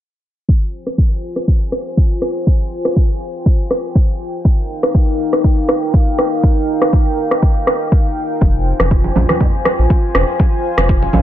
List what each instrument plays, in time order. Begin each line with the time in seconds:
0.48 analog synth pad F4 C5 G5 G#5, kick
0.87 cross-stick
0.98 kick
1.36 cross-stick
1.48 kick
1.72 cross-stick
1.97 kick
2.22 cross-stick
2.47 kick
2.85 cross-stick
2.96 kick
3.46 kick
3.71 cross-stick
3.95 kick
4.45 analog synth pad D#4 A#4 F5, kick
4.83 cross-stick
4.95 kick
5.33 cross-stick
5.44 kick
5.69 cross-stick
5.94 kick
6.19 cross-stick
6.43 kick
6.82 cross-stick
6.93 kick
7.31 cross-stick
7.43 kick
7.67 cross-stick
7.92 kick
8.41 analog synth bass F1, analog synth pad F4 C5 G#5, kick, muted conga
8.80 analog synth bass F1, cross-stick, muted conga, high conga
8.91 kick
9.04 muted conga
9.16 analog synth bass A#1, high conga, low conga
9.29 cross-stick, muted conga, high conga
9.41 kick, low conga
9.65 cross-stick, muted conga
9.79 analog synth bass A#1
9.90 kick, muted conga
10.15 analog synth bass F1, cross-stick, muted conga, high conga
10.39 analog synth pad F5, kick, muted conga
10.78 analog synth bass F1, cross-stick, muted conga, high conga
10.89 kick
11.02 muted conga
11.13 analog synth bass A#1, high conga, low conga